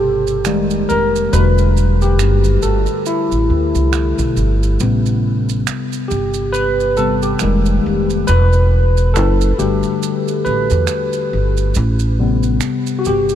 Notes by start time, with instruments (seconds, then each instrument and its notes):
Already playing: upright bass G1, tine electric piano B2 C3 G3 G4 A4
0.27 maracas
0.45 upright bass F1, tine electric piano D#3 G3 G#3 A#3, finger snap, maracas
0.70 maracas
0.89 upright bass F1, tine electric piano A#4, maracas
1.16 maracas
1.33 upright bass E1, tine electric piano D3 G3 A3 F#4 B4, maracas
1.58 maracas
1.77 maracas
2.02 tine electric piano G4, maracas
2.19 upright bass F#1, finger snap, maracas
2.44 maracas
2.62 upright bass G1, tine electric piano A4, maracas
2.86 maracas
3.06 tine electric piano E4, maracas
3.32 upright bass A1, maracas
3.50 upright bass D2
3.75 upright bass C2, maracas
3.93 finger snap, maracas
4.18 upright bass B1, maracas
4.37 upright bass G1, maracas
4.63 maracas
4.79 upright bass A1, tine electric piano C3 G3 B3, maracas
5.06 maracas
5.49 maracas
5.67 finger snap, maracas
5.93 maracas
6.08 upright bass G1, tine electric piano G4, maracas
6.34 maracas
6.53 tine electric piano B4, maracas
6.80 maracas
6.97 tine electric piano C3 G3 B3 A4, maracas
7.22 tine electric piano G4, maracas
7.39 upright bass F1, tine electric piano D#3 G3 G#3 A#3, finger snap, maracas
7.66 maracas
7.86 upright bass F1
8.10 maracas
8.27 upright bass E1, tine electric piano B4, maracas
8.53 maracas
8.97 maracas
9.14 upright bass F#1, tine electric piano A4, finger snap, maracas
9.41 maracas
9.58 upright bass G1, tine electric piano D3 G3 A3 F#4 G4, maracas
9.83 maracas
10.03 maracas
10.28 maracas
10.45 upright bass A1, tine electric piano B4, maracas
10.70 upright bass E2, maracas
10.87 finger snap, maracas
11.13 maracas
11.33 upright bass G1
11.57 maracas
11.75 upright bass A1, maracas
11.99 maracas
12.19 tine electric piano C3 G3 B3
12.43 maracas
12.61 finger snap, maracas
12.87 maracas
12.99 tine electric piano F#4
13.05 upright bass G1, tine electric piano G4, maracas
13.29 maracas